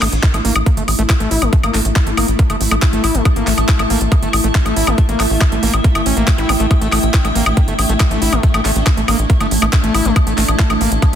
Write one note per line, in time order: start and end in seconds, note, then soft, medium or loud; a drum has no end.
0.00 0.08 A1 loud
0.00 11.15 A3 medium
0.00 0.08 A3 medium
0.00 6.73 E4 medium
0.00 clap soft
0.00 open hi-hat loud
0.00 high woodblock medium
0.12 0.19 A1 medium
0.12 closed hi-hat medium
0.23 0.27 E4 medium
0.23 kick loud
0.23 clap loud
0.23 closed hi-hat medium
0.34 0.41 A1 medium
0.34 0.38 A3 medium
0.34 11.15 E4 medium
0.34 11.15 E5 medium
0.34 closed hi-hat medium
0.34 high woodblock soft
0.45 0.52 A1 loud
0.45 0.54 A#3 loud
0.45 open hi-hat loud
0.56 0.62 A1 medium
0.56 closed hi-hat medium
0.56 high woodblock medium
0.66 0.70 A#3 medium
0.66 kick loud
0.66 closed hi-hat medium
0.77 0.84 G1 medium
0.77 0.84 A3 medium
0.77 closed hi-hat medium
0.88 0.95 A1 loud
0.88 open hi-hat loud
0.88 high woodblock soft
0.99 1.06 A1 medium
0.99 1.03 A3 loud
0.99 closed hi-hat medium
1.10 1.13 E4 medium
1.10 kick loud
1.10 clap loud
1.10 closed hi-hat medium
1.10 high woodblock medium
1.20 1.27 A1 medium
1.20 1.30 A3 loud
1.20 closed hi-hat medium
1.30 1.38 A1 medium
1.30 1.43 E4 medium
1.30 4.78 A5 medium
1.30 open hi-hat loud
1.42 1.49 A1 medium
1.42 1.51 A3 medium
1.42 closed hi-hat medium
1.42 high woodblock soft
1.53 1.57 A3 medium
1.53 kick loud
1.53 closed hi-hat medium
1.63 1.70 A1 medium
1.63 1.76 A#3 medium
1.63 closed hi-hat medium
1.63 high woodblock medium
1.74 1.81 A1 loud
1.74 1.81 A3 medium
1.74 clap soft
1.74 open hi-hat loud
1.85 1.92 A1 medium
1.85 closed hi-hat medium
1.96 2.00 E4 medium
1.96 kick loud
1.96 clap loud
1.96 closed hi-hat medium
1.96 high woodblock soft
2.07 2.13 A1 medium
2.07 2.10 A3 medium
2.07 closed hi-hat medium
2.17 2.24 A1 loud
2.17 2.27 A#3 loud
2.17 open hi-hat loud
2.17 high woodblock medium
2.28 2.35 A1 medium
2.28 closed hi-hat medium
2.39 2.43 A#3 medium
2.39 kick loud
2.39 closed hi-hat medium
2.50 2.57 G1 medium
2.50 2.56 A3 medium
2.50 closed hi-hat medium
2.50 high woodblock soft
2.61 2.67 A1 loud
2.61 open hi-hat loud
2.71 2.78 A1 medium
2.71 2.75 A3 loud
2.71 closed hi-hat medium
2.71 high woodblock medium
2.82 2.86 E4 medium
2.82 kick loud
2.82 clap loud
2.82 closed hi-hat medium
2.93 3.00 A1 medium
2.93 3.03 A3 loud
2.93 closed hi-hat medium
3.04 3.11 A1 loud
3.04 3.16 E4 medium
3.04 open hi-hat loud
3.04 high woodblock soft
3.15 3.21 A1 medium
3.15 3.24 A3 medium
3.15 closed hi-hat medium
3.25 3.29 A3 medium
3.25 kick loud
3.25 closed hi-hat medium
3.25 high woodblock medium
3.36 3.43 A1 medium
3.36 3.48 A#3 medium
3.36 closed hi-hat medium
3.47 3.54 A1 loud
3.47 3.53 A3 medium
3.47 clap soft
3.47 open hi-hat loud
3.58 3.65 A1 medium
3.58 closed hi-hat medium
3.58 high woodblock soft
3.69 3.72 E4 medium
3.69 kick loud
3.69 clap loud
3.69 closed hi-hat medium
3.79 3.86 A1 medium
3.79 3.83 A3 medium
3.79 closed hi-hat medium
3.79 high woodblock medium
3.90 3.97 A1 loud
3.90 4.00 A#3 loud
3.90 open hi-hat loud
4.01 4.08 A1 medium
4.01 closed hi-hat medium
4.12 4.16 A#3 medium
4.12 kick loud
4.12 closed hi-hat medium
4.12 high woodblock soft
4.22 4.29 G1 medium
4.22 4.29 A3 medium
4.22 closed hi-hat medium
4.33 4.40 A1 loud
4.33 open hi-hat loud
4.33 high woodblock medium
4.44 4.51 A1 medium
4.44 4.48 A3 loud
4.44 closed hi-hat medium
4.55 4.59 E4 medium
4.55 kick loud
4.55 clap loud
4.55 closed hi-hat medium
4.66 4.72 A1 medium
4.66 4.75 A3 loud
4.66 closed hi-hat medium
4.66 high woodblock soft
4.76 4.83 A1 loud
4.76 4.89 E4 medium
4.76 8.23 G5 loud
4.76 open hi-hat loud
4.87 4.94 A1 medium
4.87 4.97 A3 medium
4.87 closed hi-hat medium
4.87 high woodblock medium
4.98 5.02 A3 medium
4.98 kick loud
4.98 closed hi-hat medium
5.09 5.16 A1 medium
5.09 5.21 A#3 medium
5.09 closed hi-hat medium
5.20 5.26 A1 loud
5.20 5.26 A3 medium
5.20 clap soft
5.20 open hi-hat loud
5.20 high woodblock soft
5.30 5.37 A1 medium
5.30 open hi-hat medium
5.41 5.45 E4 medium
5.41 kick loud
5.41 clap loud
5.41 high woodblock medium
5.52 5.59 A1 medium
5.52 5.56 A3 medium
5.52 closed hi-hat medium
5.63 5.70 A1 loud
5.63 5.72 A#3 loud
5.63 open hi-hat loud
5.74 5.80 A1 medium
5.74 closed hi-hat medium
5.74 high woodblock soft
5.84 5.88 A#3 medium
5.84 kick loud
5.84 closed hi-hat medium
5.95 6.02 G1 medium
5.95 6.02 A3 medium
5.95 closed hi-hat medium
5.95 high woodblock medium
6.06 6.13 A1 loud
6.06 6.16 C#4 medium
6.06 open hi-hat loud
6.17 6.24 A1 medium
6.17 6.26 A#3 medium
6.17 closed hi-hat medium
6.28 6.31 A#3 loud
6.28 kick loud
6.28 clap loud
6.28 closed hi-hat medium
6.28 high woodblock soft
6.38 6.45 A1 medium
6.38 6.51 E4 loud
6.38 closed hi-hat medium
6.38 zap medium
6.49 6.56 A1 loud
6.49 6.53 A3 medium
6.49 open hi-hat loud
6.49 high woodblock medium
6.60 6.67 A1 medium
6.60 6.66 A3 medium
6.60 closed hi-hat medium
6.71 6.75 A3 medium
6.71 11.15 D4 medium
6.71 kick loud
6.71 closed hi-hat medium
6.71 high woodblock soft
6.81 6.88 A1 medium
6.81 6.88 A3 loud
6.81 closed hi-hat medium
6.92 6.99 A1 loud
6.92 6.99 A3 medium
6.92 clap soft
6.92 open hi-hat loud
6.92 high woodblock medium
7.03 7.10 A1 medium
7.03 closed hi-hat medium
7.14 7.18 E4 medium
7.14 kick loud
7.14 clap loud
7.14 closed hi-hat medium
7.25 7.31 A1 medium
7.25 7.28 A3 medium
7.25 closed hi-hat medium
7.25 high woodblock soft
7.35 7.42 A1 loud
7.35 7.45 A#3 loud
7.35 open hi-hat loud
7.46 7.53 A1 medium
7.46 closed hi-hat medium
7.46 high woodblock medium
7.57 7.61 A#3 medium
7.57 kick loud
7.57 closed hi-hat medium
7.68 7.75 G1 medium
7.68 7.74 A3 medium
7.68 closed hi-hat medium
7.79 7.85 A1 loud
7.79 open hi-hat loud
7.79 high woodblock soft
7.89 7.96 A1 medium
7.89 7.93 A3 loud
7.89 closed hi-hat medium
8.00 8.04 E4 medium
8.00 kick loud
8.00 clap loud
8.00 closed hi-hat medium
8.00 high woodblock medium
8.11 8.18 A1 medium
8.11 8.21 A3 loud
8.11 closed hi-hat medium
8.21 8.29 A1 loud
8.21 8.34 E4 medium
8.21 11.15 A5 medium
8.21 open hi-hat loud
8.33 8.39 A1 medium
8.33 8.42 A3 medium
8.33 closed hi-hat medium
8.33 high woodblock soft
8.43 8.47 A3 medium
8.43 kick loud
8.43 closed hi-hat medium
8.54 8.61 A1 medium
8.54 8.61 A3 loud
8.54 closed hi-hat medium
8.54 high woodblock medium
8.65 8.72 A1 loud
8.65 8.71 A3 medium
8.65 clap soft
8.65 open hi-hat loud
8.76 8.83 A1 medium
8.76 closed hi-hat medium
8.86 8.90 E4 medium
8.86 kick loud
8.86 clap loud
8.86 closed hi-hat medium
8.86 high woodblock soft
8.97 9.04 A1 medium
8.97 9.01 A3 medium
8.97 closed hi-hat medium
9.08 9.15 A1 loud
9.08 9.18 A#3 loud
9.08 open hi-hat loud
9.08 high woodblock medium
9.19 9.26 A1 medium
9.19 closed hi-hat medium
9.30 9.34 A#3 medium
9.30 kick loud
9.30 closed hi-hat medium
9.40 9.47 G1 medium
9.40 9.47 A3 medium
9.40 closed hi-hat medium
9.40 high woodblock soft
9.51 9.58 A1 loud
9.51 open hi-hat loud
9.62 9.69 A1 medium
9.62 9.66 A3 loud
9.62 high woodblock medium
9.73 9.77 E4 medium
9.73 kick loud
9.73 clap loud
9.73 closed hi-hat medium
9.84 9.90 A1 medium
9.84 9.93 A3 loud
9.84 closed hi-hat medium
9.94 10.01 A1 loud
9.94 10.07 E4 medium
9.94 open hi-hat loud
9.94 high woodblock soft
10.05 10.12 A1 medium
10.05 10.15 A3 medium
10.05 closed hi-hat medium
10.16 10.20 A3 medium
10.16 kick loud
10.16 closed hi-hat medium
10.16 high woodblock medium
10.27 10.34 A1 medium
10.27 10.33 A3 loud
10.27 closed hi-hat medium
10.38 10.44 A1 loud
10.38 10.44 A3 medium
10.38 clap soft
10.38 open hi-hat loud
10.48 10.55 A1 medium
10.48 closed hi-hat medium
10.48 high woodblock soft
10.59 10.63 E4 medium
10.59 kick loud
10.59 clap loud
10.59 closed hi-hat medium
10.70 10.77 A1 medium
10.70 10.74 A3 medium
10.70 closed hi-hat medium
10.70 high woodblock medium
10.81 10.88 A1 loud
10.81 10.90 A#3 loud
10.81 open hi-hat loud
10.92 10.98 A1 medium
10.92 closed hi-hat medium
11.02 11.06 A#3 medium
11.02 kick loud
11.02 closed hi-hat medium
11.02 high woodblock soft